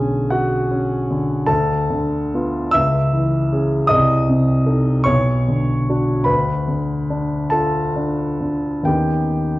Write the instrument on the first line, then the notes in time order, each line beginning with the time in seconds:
grand piano
Already playing: B1 D3 C#4 G#4 G#5
0.30 F#4 F#5
0.71 C#4
1.11 D3
1.47 D2 A4 A5
1.90 D3
2.34 B3 F4
2.72 C#2 E5 E6
3.13 E3
3.52 C#4 G#4
3.87 C2 D#5 D#6
4.29 C3
4.67 D#4 A4
5.04 B1 C#5 C#6
5.48 D3
5.90 D4 F#4
6.24 D2 B4 B5
6.68 D3
7.10 D4
7.50 F4 A4 A5
7.96 D4
8.41 D3
8.83 D#2 D#3 B3 C#4 D#4 G4 G5